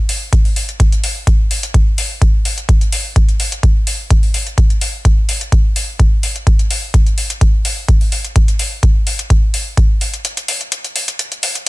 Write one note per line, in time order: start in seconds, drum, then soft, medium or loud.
0.09 open hi-hat medium
0.33 kick loud
0.33 closed hi-hat medium
0.45 open hi-hat soft
0.56 open hi-hat medium
0.69 closed hi-hat soft
0.80 kick loud
0.80 closed hi-hat medium
0.92 closed hi-hat soft
1.04 open hi-hat medium
1.27 kick loud
1.27 closed hi-hat medium
1.51 open hi-hat medium
1.63 closed hi-hat soft
1.74 kick loud
1.74 closed hi-hat medium
1.98 open hi-hat medium
2.22 kick loud
2.22 closed hi-hat medium
2.45 open hi-hat medium
2.58 closed hi-hat soft
2.69 kick loud
2.69 closed hi-hat medium
2.81 closed hi-hat soft
2.92 open hi-hat medium
3.16 kick loud
3.16 closed hi-hat medium
3.29 closed hi-hat soft
3.40 open hi-hat medium
3.52 closed hi-hat soft
3.63 kick loud
3.63 closed hi-hat medium
3.87 open hi-hat medium
4.10 kick loud
4.10 closed hi-hat medium
4.23 open hi-hat soft
4.34 open hi-hat medium
4.47 closed hi-hat soft
4.58 kick loud
4.58 closed hi-hat medium
4.70 closed hi-hat soft
4.81 open hi-hat medium
5.05 kick loud
5.05 closed hi-hat medium
5.29 open hi-hat medium
5.41 closed hi-hat soft
5.52 kick loud
5.52 closed hi-hat medium
5.76 open hi-hat medium
6.00 kick loud
6.00 closed hi-hat medium
6.23 open hi-hat medium
6.36 closed hi-hat soft
6.47 kick loud
6.47 closed hi-hat medium
6.59 closed hi-hat soft
6.71 open hi-hat medium
6.94 kick loud
6.94 closed hi-hat medium
7.06 closed hi-hat soft
7.18 open hi-hat medium
7.30 closed hi-hat soft
7.41 kick loud
7.41 closed hi-hat medium
7.65 open hi-hat medium
7.88 kick loud
7.88 closed hi-hat medium
8.01 open hi-hat soft
8.12 open hi-hat medium
8.25 closed hi-hat soft
8.36 kick loud
8.36 closed hi-hat medium
8.48 closed hi-hat soft
8.59 open hi-hat medium
8.83 kick loud
8.83 closed hi-hat medium
9.07 open hi-hat medium
9.19 closed hi-hat soft
9.30 kick loud
9.30 closed hi-hat medium
9.54 open hi-hat medium
9.77 kick loud
9.77 closed hi-hat medium
10.01 open hi-hat medium
10.14 closed hi-hat soft
10.25 closed hi-hat medium
10.37 closed hi-hat soft
10.48 open hi-hat medium
10.61 closed hi-hat soft
10.72 closed hi-hat medium
10.84 closed hi-hat soft
10.96 open hi-hat medium
11.08 closed hi-hat soft
11.19 closed hi-hat medium
11.32 closed hi-hat soft
11.43 open hi-hat medium
11.55 closed hi-hat soft